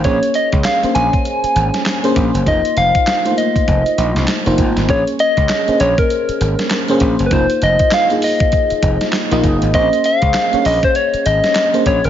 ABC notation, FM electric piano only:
X:1
M:4/4
L:1/16
Q:"Swing 16ths" 1/4=99
K:Bbm
V:1 name="FM electric piano"
[B,DAd]4 z [B,DAc]6- [B,DAc] z [B,DAc]3 | [B,EFc]4 z [=A,B,EFc]6- [A,B,EFc] z [B,EFc]3 | [B,DAd]4 z [B,DAc]6- [B,DAc] z [B,DAc]3 | [B,EFc]4 z [B,EFA]6- [B,EFA] z [B,EFe]3 |
[B,CDAc]4 z [B,DAd]6- [B,DAd] z [B,DAc]3 |]